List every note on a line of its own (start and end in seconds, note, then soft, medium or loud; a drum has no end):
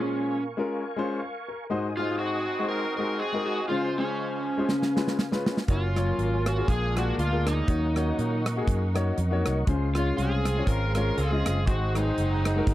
0.00 0.43 A#2 medium
0.00 0.43 F3 medium
0.00 0.35 G#3 medium
0.00 0.42 G#3 medium
0.00 0.36 C#4 medium
0.00 0.43 C#4 medium
0.00 0.47 C#4 medium
0.00 0.36 F4 medium
0.00 0.36 G#4 medium
0.00 1.67 A#4 medium
0.00 1.65 F5 medium
0.00 5.65 G#5 medium
0.00 1.67 C#6 medium
0.57 0.81 G#3 medium
0.57 0.82 C#4 medium
0.57 0.82 F4 medium
0.57 0.82 A#4 medium
0.96 1.18 G#3 medium
0.96 1.18 C#4 medium
0.96 1.18 F4 medium
0.96 1.19 C5 medium
1.19 1.46 F5 medium
1.48 1.95 A#4 medium
1.70 2.44 G#2 medium
1.70 1.87 G#3 medium
1.70 1.88 D#4 medium
1.70 1.88 F#4 medium
1.70 1.88 C5 medium
1.70 4.67 D#5 medium
1.70 3.68 F#5 medium
1.70 3.67 D#6 medium
1.97 2.36 G#3 medium
1.97 2.36 D#4 medium
1.97 2.18 F4 medium
1.97 2.17 F4 medium
1.97 2.37 F#4 medium
1.97 2.37 C5 medium
2.19 3.16 C4 medium
2.19 2.69 D#4 medium
2.19 2.65 F#4 medium
2.19 2.69 F#4 medium
2.59 2.82 G#3 medium
2.59 2.83 D#4 medium
2.59 2.83 F#4 medium
2.59 2.83 C5 medium
2.68 3.19 D#4 medium
2.68 3.66 F#4 medium
2.68 2.95 A#4 loud
2.68 2.95 A#4 medium
2.96 3.18 G#3 medium
2.96 3.19 D#4 medium
2.96 3.19 F#4 medium
2.96 3.17 A#4 loud
2.96 3.19 A#4 medium
3.00 3.19 C5 medium
3.17 3.66 C4 medium
3.17 3.66 D#4 medium
3.17 3.68 G#4 loud
3.17 3.46 G#4 medium
3.33 3.57 G#3 medium
3.33 3.57 D#4 medium
3.33 3.57 F#4 medium
3.33 3.58 A#4 medium
3.47 3.68 F#4 medium
3.68 4.44 C#3 medium
3.68 3.87 G#3 medium
3.68 3.98 G#3 medium
3.68 3.88 C#4 medium
3.68 3.81 F4 medium
3.68 3.98 F4 medium
3.68 3.88 F4 medium
3.68 4.65 C5 medium
3.68 3.88 C5 medium
3.72 4.69 F5 medium
3.97 4.94 F3 medium
3.97 4.36 G#3 medium
3.97 4.94 G#3 medium
3.97 4.93 C#4 medium
3.97 4.36 C#4 medium
3.97 4.37 F4 medium
3.97 4.37 G#4 medium
4.58 4.69 G#3 medium
4.58 4.69 C#4 medium
4.58 4.69 F4 medium
4.58 4.69 C5 medium
4.69 5.43 C#3 medium
4.69 5.68 B4 medium
4.69 7.66 F5 medium
4.69 snare soft
4.83 snare soft
4.96 5.17 G#3 medium
4.96 5.18 C#4 medium
4.96 5.18 F4 medium
4.96 5.18 B4 medium
4.96 snare medium
5.08 snare medium
5.19 snare medium
5.32 5.56 G#3 medium
5.32 5.56 C#4 medium
5.32 5.56 F4 medium
5.32 5.57 B4 medium
5.32 snare medium
5.46 snare medium
5.57 snare medium
5.68 6.11 F#1 medium
5.68 6.67 F#3 medium
5.68 5.86 A#3 medium
5.68 6.67 A#3 medium
5.68 6.65 A#3 medium
5.68 6.68 C#4 medium
5.68 6.65 C#4 medium
5.68 5.86 F4 medium
5.68 7.66 F4 medium
5.68 6.65 F4 medium
5.68 5.87 F#4 medium
5.68 9.65 A#4 medium
5.68 5.87 C#5 medium
5.68 6.68 C#5 medium
5.68 kick loud
5.68 closed hi-hat medium
5.72 6.48 F4 medium
5.95 6.35 F#3 medium
5.95 6.34 A#3 medium
5.95 6.35 F4 medium
5.95 6.35 C#5 medium
5.95 cross-stick medium
5.95 closed hi-hat medium
6.18 6.61 G#1 medium
6.18 closed hi-hat medium
6.46 6.70 F#4 loud
6.46 cross-stick loud
6.46 closed hi-hat medium
6.57 6.68 A#3 medium
6.57 6.68 F4 medium
6.57 6.69 F#4 medium
6.57 6.69 G#4 medium
6.68 7.11 A#1 medium
6.68 7.42 A#2 medium
6.68 7.68 G#3 medium
6.68 9.66 A#3 medium
6.68 7.64 D4 medium
6.68 7.68 D4 medium
6.68 7.18 F4 medium
6.68 6.97 G#4 loud
6.68 6.98 G#4 medium
6.68 7.68 G#5 medium
6.68 7.68 D6 medium
6.68 kick loud
6.68 closed hi-hat medium
6.95 7.17 A#3 medium
6.95 7.17 F4 medium
6.95 7.18 F#4 medium
6.95 7.17 F#4 medium
6.95 7.18 G#4 medium
6.95 7.18 D5 medium
6.95 cross-stick loud
6.95 closed hi-hat medium
7.18 7.61 D2 medium
7.18 7.45 F4 medium
7.18 7.48 F4 medium
7.18 closed hi-hat medium
7.31 7.56 A#3 medium
7.31 7.56 F4 medium
7.31 7.56 G#4 medium
7.31 7.57 A#4 medium
7.46 8.43 F#3 medium
7.46 8.43 A#3 medium
7.46 8.42 D#4 medium
7.46 8.47 D#4 medium
7.46 cross-stick loud
7.46 closed hi-hat medium
7.67 8.11 D#2 medium
7.67 8.42 D#3 medium
7.67 9.65 F#3 medium
7.67 7.86 A#3 medium
7.67 9.65 C#4 medium
7.67 9.65 D#4 medium
7.67 7.86 D#4 medium
7.67 7.86 F#4 medium
7.67 7.86 C#5 medium
7.67 9.67 D#5 medium
7.67 9.67 F#5 medium
7.67 9.67 C#6 medium
7.67 kick medium
7.67 closed hi-hat medium
7.95 8.34 A#3 medium
7.95 8.34 D#4 medium
7.95 8.35 F#4 medium
7.95 8.35 C#5 medium
7.95 cross-stick medium
7.95 closed hi-hat medium
8.19 8.61 A#2 medium
8.19 closed hi-hat medium
8.46 cross-stick loud
8.46 closed hi-hat medium
8.57 8.81 A#3 medium
8.57 8.81 D#4 medium
8.57 8.81 F#4 medium
8.57 8.81 G#4 medium
8.67 9.10 F#2 medium
8.67 kick loud
8.67 closed hi-hat medium
8.94 9.16 A#3 medium
8.94 9.16 D#4 medium
8.94 9.16 F#4 medium
8.94 9.17 C#5 medium
8.94 cross-stick loud
8.94 closed hi-hat medium
9.18 9.42 F2 medium
9.18 closed hi-hat medium
9.31 9.55 A#3 medium
9.31 9.56 D#4 medium
9.31 9.56 F#4 medium
9.31 9.56 C#5 medium
9.46 9.65 C2 medium
9.46 cross-stick loud
9.46 closed hi-hat medium
9.66 10.10 C#2 medium
9.66 10.42 C#3 medium
9.66 12.74 G#3 medium
9.66 9.85 G#3 medium
9.66 9.86 C#4 medium
9.66 11.65 F4 medium
9.66 9.86 F4 medium
9.66 12.74 G#4 medium
9.66 9.86 C5 medium
9.66 11.66 F5 medium
9.66 12.74 C6 medium
9.66 kick loud
9.66 closed hi-hat medium
9.95 10.35 G#3 medium
9.95 10.35 C#4 medium
9.95 10.16 F4 medium
9.95 10.35 F4 medium
9.95 10.36 C#5 medium
9.95 cross-stick loud
9.95 closed hi-hat medium
10.17 10.60 C2 medium
10.17 11.13 C4 medium
10.17 10.67 F4 medium
10.17 10.67 G#4 loud
10.17 10.68 G#4 loud
10.17 closed hi-hat medium
10.45 cross-stick loud
10.45 closed hi-hat medium
10.56 10.80 G#3 medium
10.56 10.81 C#4 medium
10.56 10.81 F4 medium
10.56 10.81 C#5 medium
10.67 11.10 G#1 medium
10.67 11.17 F4 medium
10.67 10.94 A#4 medium
10.67 10.96 A#4 loud
10.67 kick medium
10.67 closed hi-hat medium
10.95 11.17 G#3 medium
10.95 11.17 C#4 medium
10.95 11.17 F4 medium
10.95 11.16 A#4 loud
10.95 11.17 A#4 medium
10.95 11.17 C#5 medium
10.95 cross-stick loud
10.95 closed hi-hat medium
11.18 11.42 C#2 medium
11.18 11.64 C4 medium
11.18 11.64 F4 medium
11.18 11.68 G#4 medium
11.18 11.68 G#4 loud
11.18 closed hi-hat medium
11.31 11.55 G#3 medium
11.31 11.56 C#4 medium
11.31 11.56 F4 medium
11.31 11.56 D#5 medium
11.46 11.68 F#1 medium
11.46 cross-stick loud
11.46 closed hi-hat medium
11.66 12.10 G#1 medium
11.66 12.41 G#2 medium
11.66 11.85 G#3 medium
11.66 11.95 C4 medium
11.66 12.74 D#4 medium
11.66 11.85 D#4 medium
11.66 11.95 D#4 medium
11.66 12.74 F#4 medium
11.66 11.85 F#4 medium
11.66 11.96 F#4 medium
11.66 11.94 F#4 medium
11.66 11.86 C5 medium
11.66 12.74 D#5 medium
11.66 12.74 F#5 medium
11.66 kick loud
11.66 closed hi-hat medium
11.95 12.74 F#3 medium
11.95 12.34 G#3 medium
11.95 12.74 C4 medium
11.95 12.34 D#4 medium
11.95 12.74 D#4 medium
11.95 12.34 F#4 medium
11.95 12.01 B4 medium
11.95 cross-stick medium
11.95 closed hi-hat medium
12.03 12.38 C5 medium
12.18 12.60 F#1 medium
12.18 closed hi-hat medium
12.45 cross-stick loud
12.45 closed hi-hat medium
12.56 12.74 G#3 medium
12.56 12.74 D#4 medium
12.56 12.74 F#4 medium
12.56 12.74 A#4 medium
12.67 12.74 G#1 medium
12.67 kick loud
12.67 closed hi-hat medium